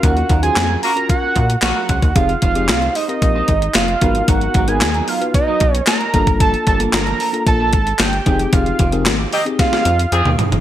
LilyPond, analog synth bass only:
\new Staff \with { instrumentName = "Analog synth bass" } { \clef bass \time 4/4 \key ees \major \tempo 4 = 113 ees,8 ees,8 f,8 r4 bes,8 bes,,16 r16 des,16 ees,16 | f,,8 f,,8 c,8 r8 bes,,8 aes,,8 f,,8 aes,,8 | aes,,8 aes,,8 ees,8 r4 ces,8 r8 g,,8~ | g,,8 g,,8 g,,8 r8 bes,,8 aes,,8 g,,8 f,,8 |
f,,8 f,,8 aes,,8 r4 f,8 f,16 ees,16 r16 g,,16 | }